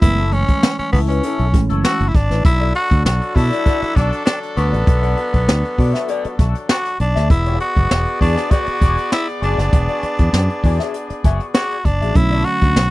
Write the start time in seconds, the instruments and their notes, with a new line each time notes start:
0.01 fingered electric bass F#1, reed electric piano E3 G#3 A3 B3, tenor saxophone E4, muted clean electric guitar stroke, kick, closed hi-hat
0.18 clean electric guitar C#4 E4 A4, closed hi-hat
0.31 reed electric piano E3 G#3 A3 C#4, tenor saxophone C#4, muted clean electric guitar stroke, closed hi-hat
0.48 muted clean electric guitar stroke, kick, closed hi-hat
0.62 muted clean electric guitar stroke, snare
0.79 tenor saxophone C#4, muted clean electric guitar stroke, muted fingered electric bass stroke, closed hi-hat
0.92 fingered electric bass C#2, tenor saxophone B3, clean electric guitar C#4 E4 A4, kick, open hi-hat
1.08 tenor saxophone C#4, clean electric guitar C#4 E4 B4, closed hi-hat
1.23 clean electric guitar C#4 E4 A4, closed hi-hat
1.39 fingered electric bass B1, closed hi-hat
1.53 fingered electric bass A1, reed electric piano E3 G#3 A3 C#4, muted clean electric guitar stroke, kick, closed hi-hat
1.69 fingered electric bass F#1, clean electric guitar C#4 E4 A4, closed hi-hat
1.83 clean electric guitar C#4 E4 A4, tenor saxophone F#4, snare
2.00 fingered electric bass F#1, closed hi-hat
2.08 tenor saxophone E4
2.15 fingered electric bass G#1, tenor saxophone D4, muted clean electric guitar stroke, kick, closed hi-hat
2.30 fingered electric bass A1, clean electric guitar C#4 E4 B4, snare, closed hi-hat
2.44 fingered electric bass B1, horn section F#3 D4 A4, tenor saxophone E4, muted clean electric guitar stroke, kick, closed hi-hat
2.60 clean electric guitar F#4 A4 D5, closed hi-hat
2.75 tenor saxophone F#4, muted clean electric guitar stroke, closed hi-hat
2.91 fingered electric bass D2, kick, closed hi-hat
3.05 fingered electric bass B1, tenor saxophone F#4, muted clean electric guitar stroke, snare
3.22 muted clean electric guitar stroke, closed hi-hat
3.36 fingered electric bass B2, tenor saxophone E4, clean electric guitar F#4 A4 D5, kick, open hi-hat
3.52 clean electric guitar F#4 A4 D5, closed hi-hat
3.66 clean electric guitar F#4 A4 D5, kick, closed hi-hat
3.81 muted clean electric guitar stroke, muted fingered electric bass stroke, closed hi-hat
3.95 fingered electric bass B1, tenor saxophone D4, clean electric guitar F#4 A4 D5, kick, closed hi-hat
4.12 muted clean electric guitar stroke, closed hi-hat
4.26 tenor saxophone D4, snare
4.42 muted clean electric guitar stroke, closed hi-hat
4.56 fingered electric bass D2, tenor saxophone B3, clean electric guitar F#4 A4 D5, closed hi-hat
4.73 fingered electric bass A1, muted clean electric guitar stroke, closed hi-hat
4.87 fingered electric bass B1, muted clean electric guitar stroke, kick, closed hi-hat
5.02 clean electric guitar F#4 A4 D5, closed hi-hat
5.17 muted clean electric guitar stroke, closed hi-hat
5.33 fingered electric bass B1, muted clean electric guitar stroke, kick, closed hi-hat
5.46 fingered electric bass D2, muted clean electric guitar stroke, snare
5.62 muted clean electric guitar stroke, closed hi-hat
5.77 fingered electric bass B2, clean electric guitar F#4 A4 D5, kick, open hi-hat
5.94 clean electric guitar F#4 A4 E5, snare, closed hi-hat
6.08 clean electric guitar F#4 A4 D5, closed hi-hat
6.24 muted clean electric guitar stroke, muted fingered electric bass stroke, closed hi-hat
6.39 fingered electric bass B1, clean electric guitar F#4 A4 E5, kick, closed hi-hat
6.55 muted clean electric guitar stroke, closed hi-hat
6.69 clean electric guitar F#4 A4 D5, tenor saxophone F#4, snare
6.85 closed hi-hat
7.00 fingered electric bass B1, tenor saxophone D4, muted clean electric guitar stroke, closed hi-hat
7.15 fingered electric bass D2, clean electric guitar F#4 A4 E5, snare, closed hi-hat
7.30 fingered electric bass E1, horn section B3 G#4 D5, tenor saxophone E4, muted clean electric guitar stroke, kick, closed hi-hat
7.46 clean electric guitar F#4 G#4 D5, closed hi-hat
7.60 tenor saxophone F#4, muted clean electric guitar stroke, closed hi-hat
7.76 fingered electric bass F#1, muted clean electric guitar stroke, kick, closed hi-hat
7.91 fingered electric bass E1, muted clean electric guitar stroke, snare
8.06 muted clean electric guitar stroke, closed hi-hat
8.20 fingered electric bass E2, tenor saxophone D4, clean electric guitar F#4 G#4 D5, kick, open hi-hat
8.36 clean electric guitar F#4 G#4 D5, snare, closed hi-hat
8.50 clean electric guitar F#4 G#4 D5, tenor saxophone F#4, kick, closed hi-hat
8.67 muted clean electric guitar stroke, muted fingered electric bass stroke, closed hi-hat
8.81 fingered electric bass E1, clean electric guitar F#4 G#4 D5, kick, closed hi-hat
8.97 muted clean electric guitar stroke, closed hi-hat
9.11 tenor saxophone E4, muted clean electric guitar stroke, snare
9.28 muted clean electric guitar stroke, closed hi-hat
9.41 fingered electric bass F#1, tenor saxophone D4, clean electric guitar F#4 G#4 D5, closed hi-hat
9.58 fingered electric bass F#1, muted clean electric guitar stroke, snare, closed hi-hat
9.73 fingered electric bass E1, muted clean electric guitar stroke, kick, closed hi-hat
9.89 clean electric guitar F#4 G#4 D5, closed hi-hat
10.03 muted fingered electric bass stroke, muted clean electric guitar stroke, closed hi-hat
10.18 fingered electric bass E2, muted clean electric guitar stroke, kick, closed hi-hat
10.33 fingered electric bass F#2, muted clean electric guitar stroke, snare
10.49 muted clean electric guitar stroke, closed hi-hat
10.64 fingered electric bass E2, clean electric guitar F#4 G#4 D5, kick, open hi-hat
10.80 clean electric guitar F#4 G#4 E5, snare, closed hi-hat
10.94 closed hi-hat
11.10 muted clean electric guitar stroke, muted fingered electric bass stroke, closed hi-hat
11.24 fingered electric bass F#1, clean electric guitar F#4 G#4 E5, kick, closed hi-hat
11.40 muted clean electric guitar stroke, closed hi-hat
11.54 tenor saxophone F#4, clean electric guitar F#4 G#4 D5, snare
11.71 closed hi-hat
11.85 fingered electric bass F#1, tenor saxophone D4, muted clean electric guitar stroke, kick, closed hi-hat
12.01 fingered electric bass A1, clean electric guitar F#4 G#4 E5, closed hi-hat
12.14 fingered electric bass B1, reed electric piano D3 F#3 A3 C#4, tenor saxophone E4, muted clean electric guitar stroke, kick, closed hi-hat
12.31 clean electric guitar F#4 A4 D5, closed hi-hat
12.45 tenor saxophone F#4, muted clean electric guitar stroke, closed hi-hat
12.61 fingered electric bass D2, muted clean electric guitar stroke, kick, closed hi-hat
12.76 fingered electric bass B1, muted clean electric guitar stroke, snare